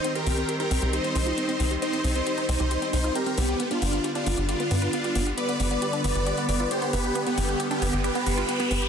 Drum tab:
HH |xxoxxxoxxxoxxxox|xxoxxxoxxxoxxxox|xxoxxxoxxxoxxxox|xxoxxxoxxxoxxxox|

HH |xxoxxxoxxxoxxxox|